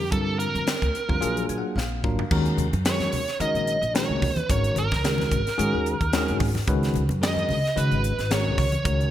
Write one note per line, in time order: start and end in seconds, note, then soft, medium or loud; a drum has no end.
0.00 0.12 F2 medium
0.00 0.12 G4 medium
0.11 0.45 G2 loud
0.11 0.73 D3 medium
0.11 0.74 G3 medium
0.11 0.74 C4 medium
0.11 0.73 F4 medium
0.11 0.37 A4 medium
0.11 0.73 A#4 medium
0.11 kick loud
0.11 closed hi-hat medium
0.39 1.45 A#4 medium
0.39 closed hi-hat medium
0.55 0.64 F2 medium
0.55 closed hi-hat soft
0.67 snare medium
0.67 closed hi-hat medium
0.82 0.92 D2 medium
0.82 kick medium
0.82 closed hi-hat soft
0.95 closed hi-hat medium
1.09 1.19 F2 medium
1.09 1.17 D3 medium
1.09 1.17 G3 medium
1.09 1.17 C4 medium
1.09 1.17 F4 medium
1.09 1.17 A#4 medium
1.09 kick medium
1.21 1.43 A#1 medium
1.21 1.74 F#3 medium
1.21 1.74 A#3 medium
1.21 1.74 D4 medium
1.21 1.74 F4 medium
1.21 1.74 G#4 medium
1.21 closed hi-hat medium
1.37 closed hi-hat soft
1.49 1.61 A#2 medium
1.49 1.58 G#5 medium
1.49 closed hi-hat medium
1.58 1.75 F#5 medium
1.76 2.04 A#1 medium
1.76 2.02 F5 medium
1.76 snare soft
2.04 2.15 G#1 medium
2.04 2.22 F#3 medium
2.04 2.22 A#3 medium
2.04 2.22 D4 medium
2.04 2.22 F4 medium
2.04 2.22 A#4 medium
2.04 2.29 F5 medium
2.04 kick medium
2.19 floor tom medium
2.31 2.52 D#2 loud
2.31 2.67 D#3 medium
2.31 2.67 G#3 medium
2.31 2.67 C#4 medium
2.31 2.67 F#4 medium
2.31 2.67 A#4 loud
2.31 kick loud
2.31 crash loud
2.45 closed hi-hat soft
2.57 2.69 D#2 medium
2.57 closed hi-hat medium
2.57 low conga medium
2.73 3.04 F#2 medium
2.73 closed hi-hat soft
2.73 high conga medium
2.85 3.22 D#3 medium
2.85 3.22 G#3 medium
2.85 3.22 C#4 medium
2.85 3.22 F#4 medium
2.85 3.22 A#4 medium
2.85 3.37 C#5 medium
2.85 snare loud
2.85 closed hi-hat medium
3.00 snare soft
3.00 closed hi-hat soft
3.00 high conga medium
3.12 3.24 D#2 medium
3.12 open hi-hat medium
3.12 low conga medium
3.28 snare soft
3.28 closed hi-hat soft
3.40 3.51 D#3 medium
3.40 3.76 D#3 medium
3.40 3.76 G#3 medium
3.40 3.76 C#4 medium
3.40 3.76 F#4 medium
3.40 3.77 A#4 medium
3.40 3.92 D#5 medium
3.40 closed hi-hat medium
3.55 3.76 A#1 medium
3.55 closed hi-hat soft
3.67 closed hi-hat medium
3.82 4.11 A#1 medium
3.82 closed hi-hat soft
3.94 4.30 D#3 medium
3.94 4.30 G#3 medium
3.94 4.30 C#4 medium
3.94 4.30 F#4 medium
3.94 4.30 A#4 medium
3.94 4.50 C#5 medium
3.94 snare loud
3.94 closed hi-hat medium
4.09 4.40 D#2 medium
4.22 kick medium
4.22 open hi-hat medium
4.22 low conga medium
4.36 closed hi-hat soft
4.36 high conga medium
4.49 4.71 G#1 medium
4.49 4.85 D#3 medium
4.49 4.85 G#3 medium
4.49 4.85 C#4 medium
4.49 4.85 F#4 medium
4.49 4.85 A#4 medium
4.49 4.78 C#5 medium
4.49 kick loud
4.49 closed hi-hat medium
4.64 closed hi-hat soft
4.76 4.88 G#1 medium
4.76 6.37 A#4 medium
4.76 closed hi-hat medium
4.76 low conga medium
4.92 5.23 C#2 medium
4.92 kick medium
4.92 snare soft
4.92 high conga medium
5.04 5.40 D#3 medium
5.04 5.40 G#3 medium
5.04 5.39 C#4 medium
5.04 5.40 F#4 medium
5.04 5.40 A#4 medium
5.04 snare medium
5.04 closed hi-hat medium
5.18 snare soft
5.18 high conga medium
5.31 5.43 G#1 medium
5.31 kick medium
5.31 closed hi-hat medium
5.31 low conga medium
5.47 snare soft
5.47 closed hi-hat soft
5.58 5.70 G#2 medium
5.58 5.94 D#3 medium
5.58 5.94 G#3 medium
5.58 5.94 C#4 medium
5.58 5.94 F#4 medium
5.58 5.94 G#4 loud
5.58 closed hi-hat medium
5.74 5.95 D#2 medium
5.86 closed hi-hat medium
6.01 6.30 D#2 medium
6.01 kick medium
6.01 closed hi-hat soft
6.13 6.49 D#3 medium
6.13 6.49 G#3 medium
6.13 6.49 C#4 medium
6.13 6.49 F#4 medium
6.13 6.49 G#4 loud
6.13 snare loud
6.13 closed hi-hat medium
6.28 6.59 G#1 medium
6.28 closed hi-hat soft
6.40 kick medium
6.40 open hi-hat medium
6.40 low conga medium
6.55 snare soft
6.55 high conga medium
6.67 6.88 C#2 medium
6.67 7.03 D#3 loud
6.67 7.03 G#3 medium
6.67 7.03 C#4 medium
6.67 7.03 F#4 medium
6.67 7.03 B4 loud
6.67 kick loud
6.67 closed hi-hat medium
6.83 snare soft
6.83 closed hi-hat soft
6.94 7.07 C#2 medium
6.94 closed hi-hat medium
6.94 low conga medium
7.09 7.41 F#2 medium
7.09 closed hi-hat soft
7.09 high conga medium
7.21 7.57 D#3 medium
7.21 7.57 G#3 medium
7.21 7.57 C#4 medium
7.21 7.57 F#4 medium
7.21 7.57 A#4 medium
7.21 7.79 D#5 loud
7.21 snare loud
7.21 closed hi-hat medium
7.37 closed hi-hat soft
7.37 high conga medium
7.49 7.61 C#2 medium
7.49 open hi-hat medium
7.49 low conga medium
7.65 snare soft
7.65 closed hi-hat soft
7.76 7.88 C#3 medium
7.76 8.11 D#3 medium
7.76 8.12 G#3 medium
7.76 8.12 C#4 medium
7.76 8.11 F#4 medium
7.76 8.12 B4 medium
7.76 8.33 B4 medium
7.76 closed hi-hat medium
7.91 8.12 G#1 medium
7.91 closed hi-hat soft
8.04 closed hi-hat medium
8.18 8.48 G#1 medium
8.18 snare soft
8.18 closed hi-hat soft
8.31 8.66 D#3 medium
8.31 8.66 G#3 medium
8.31 8.66 C#4 medium
8.31 8.66 F#4 medium
8.31 8.66 A#4 medium
8.31 8.58 C#5 medium
8.31 snare loud
8.31 closed hi-hat medium
8.46 8.77 C#2 medium
8.58 9.11 C#5 medium
8.58 kick medium
8.58 open hi-hat medium
8.58 low conga medium
8.72 closed hi-hat soft
8.72 high conga medium
8.84 9.06 C#2 loud
8.84 9.11 D#3 medium
8.84 9.11 G#3 medium
8.84 9.11 C#4 medium
8.84 9.11 F#4 medium
8.84 9.11 A#4 medium
8.84 kick loud
8.84 closed hi-hat medium
9.01 closed hi-hat soft